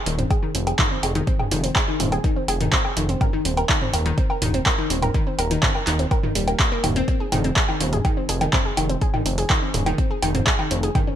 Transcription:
0.06 D#1 D#3, open hi-hat
0.19 C4, closed hi-hat, mid tom
0.31 G#4, kick, closed hi-hat, low woodblock
0.43 D#3
0.55 F1 C4, open hi-hat
0.67 G#4, closed hi-hat, low woodblock
0.79 D#3, kick, clap, closed hi-hat, mid tom
0.91 C4
1.03 F1 G#4, open hi-hat, low woodblock
1.15 D#3, closed hi-hat
1.27 C4, kick, closed hi-hat
1.40 G#4, mid tom, low woodblock
1.51 F1 D#3, open hi-hat
1.64 C4, open hi-hat
1.76 G#4, kick, clap, closed hi-hat, low woodblock
1.88 D#3
2.00 D#1 C4, mid tom, open hi-hat
2.12 G#4, closed hi-hat, low woodblock
2.24 D#3, kick, closed hi-hat
2.36 C4
2.48 F1 G#4, open hi-hat, low woodblock
2.61 D#3, closed hi-hat, mid tom
2.73 C4, kick, clap, closed hi-hat
2.85 G#4, low woodblock
2.97 F1 D#3, open hi-hat
3.09 C4, closed hi-hat
3.21 A#4, kick, closed hi-hat, mid tom, low woodblock
3.33 D#3
3.45 D#1 C4, open hi-hat
3.57 A#4, closed hi-hat, low woodblock
3.69 D#3, kick, clap, closed hi-hat
3.81 C4, mid tom
3.93 D#1 A#4, open hi-hat, low woodblock
4.06 D#3, closed hi-hat
4.18 C4, kick, closed hi-hat
4.30 A#4, low woodblock
4.42 D#1 D#3, mid tom, open hi-hat
4.54 C4, closed hi-hat
4.66 A#4, kick, clap, closed hi-hat, low woodblock
4.78 D#3
4.90 D#1 C4, open hi-hat
5.02 A#4, closed hi-hat, mid tom, low woodblock
5.14 D#3, kick, closed hi-hat
5.27 C4
5.38 D#1 A#4, open hi-hat, low woodblock
5.51 D#3, open hi-hat
5.63 C4, kick, clap, closed hi-hat, mid tom
5.75 A#4, low woodblock
5.87 D#1 D#3, clap, open hi-hat
5.99 C4, closed hi-hat
6.11 A#4, kick, closed hi-hat, low woodblock
6.23 D#3, mid tom
6.35 D#1 G3, open hi-hat
6.48 A#3, closed hi-hat, low woodblock
6.60 A#3, kick, clap, closed hi-hat
6.72 A#3
6.84 D#1 D#3, mid tom, open hi-hat, low woodblock
6.96 C4, closed hi-hat
7.08 C4, kick, closed hi-hat
7.20 G#4
7.32 F1 D#3, mid tom, open hi-hat, low woodblock
7.44 C4, closed hi-hat
7.56 G#4, kick, clap, closed hi-hat
7.69 D#3, low woodblock
7.81 D#1 C4, open hi-hat
7.93 G#4, closed hi-hat, mid tom
8.05 D#3, kick, closed hi-hat, low woodblock
8.17 C4
8.29 F1 G#4, open hi-hat
8.41 D#3, closed hi-hat, low woodblock
8.53 C4, kick, clap, closed hi-hat, mid tom
8.65 G#4
8.77 F1 D#3, open hi-hat, low woodblock
8.90 C4, closed hi-hat
9.01 G#4, kick, closed hi-hat
9.14 D#3, mid tom, low woodblock
9.26 F1 C4, open hi-hat
9.38 G#4, open hi-hat
9.50 D#3, kick, clap, closed hi-hat, low woodblock
9.62 C4
9.74 D#1 G#4, mid tom, open hi-hat
9.86 D#3, closed hi-hat, low woodblock
9.98 C4, kick, closed hi-hat
10.11 G#4
10.22 F1 D#3, open hi-hat, low woodblock
10.35 C4, closed hi-hat, mid tom
10.47 G#4, kick, clap, closed hi-hat
10.59 D#3, low woodblock
10.71 F1 C4, open hi-hat
10.83 G#4, closed hi-hat
10.95 D#3, kick, closed hi-hat, mid tom, low woodblock
11.07 C#4

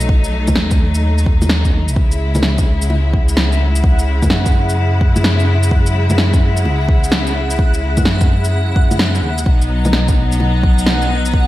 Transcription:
Already playing: B1 F#3 A3 D#4
0.01 shaker
0.09 kick
0.24 shaker
0.48 D#2, kick, low bongo, shaker
0.56 snare
0.71 kick, shaker
0.95 shaker
1.18 shaker
1.26 kick
1.42 low bongo, shaker
1.49 snare
1.65 kick, shaker
1.73 D#2
1.88 B1, shaker
1.96 C#2 C#3 G#3 E4 F#5, kick
2.12 shaker
2.35 low bongo, shaker
2.43 snare
2.58 kick, shaker
2.82 shaker
2.90 low bongo
3.13 kick
3.29 shaker
3.37 snare
3.52 shaker
3.76 shaker
3.84 kick
3.99 shaker
4.22 F#2, kick, low bongo, shaker
4.30 snare
4.46 kick, shaker
4.69 shaker
5.01 kick
5.16 low bongo, shaker
5.24 snare
5.40 shaker
5.63 shaker
5.71 kick
5.87 shaker
6.10 F#2, low bongo, shaker
6.18 snare
6.34 kick, shaker
6.57 shaker
6.65 C#2, low bongo
6.89 kick
7.04 shaker
7.12 C#2, snare
7.27 shaker
7.50 shaker
7.59 kick
7.74 shaker
7.97 F#2, kick, low bongo, shaker
8.05 snare
8.21 kick, shaker
8.44 shaker
8.76 kick
8.91 low bongo, shaker
8.99 snare
9.15 shaker
9.22 D#2
9.38 shaker
9.46 B1 F#3 B3 D#4, kick
9.62 shaker
9.85 low bongo, shaker
9.93 snare
10.08 kick, shaker
10.32 shaker
10.40 low bongo
10.63 kick
10.79 shaker
10.86 snare
11.02 shaker
11.25 shaker
11.34 kick

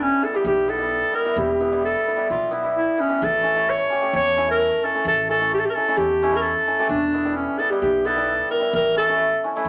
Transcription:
Already playing: G3
0.02 C#4
0.21 B3 E4 A4
0.33 G3 B3 E4 G4
0.44 B1 G4
0.68 B3 E4 A4
0.78 G3 B3 E4
1.12 B3 E4 A#4
1.24 G3 B3 E4
1.36 E1 G4
1.60 B3 E4
1.71 G3 B3 E4
1.85 A4
2.06 B3 E4
2.17 G3 B3 E4
2.30 B1 F4
2.51 B3 E4
2.63 G3 B3 E4
2.77 E4
2.98 B3 C#4 E4
3.09 G3 B3 E4
3.22 A1 A4
3.43 C#4 E4
3.55 A3 C#4 E4
3.70 C#5
3.89 C#4 G4
4.01 A3 C#4 G4
4.13 E2 C#5
4.37 C#4 E4
4.47 A3 C#4 E4 A#4
4.83 C#4 E4 A4
4.94 A3 C#4 E4
5.05 A1 A4
5.29 C#4 E4 A4
5.40 A3 C#4 E4
5.54 G4
5.59 A4
5.65 G4
5.69 A#4
5.74 C#4 E4 A4
5.88 A3 C#4 E4
5.97 E2 G4
6.22 C#4 E4
6.32 A3 C#4 E4
6.36 A#4
6.42 A4
6.67 C#4 E4
6.79 A3 C#4 G4
6.89 E1 D4
7.13 B3 E4
7.24 G3 B3 E4
7.36 C#4
7.59 B3 E4 A4
7.71 G3 B3 E4 G4
7.82 B1 G4
8.05 B3 E4 A4
8.16 G3 B3 E4
8.50 B3 E4 A#4
8.60 G3 B3 E4
8.73 A1 A#4
8.96 C#4 E4 A4
9.08 A3 C#4 E4
9.44 C#4 E4
9.56 A3 C#4 E4
9.65 E2

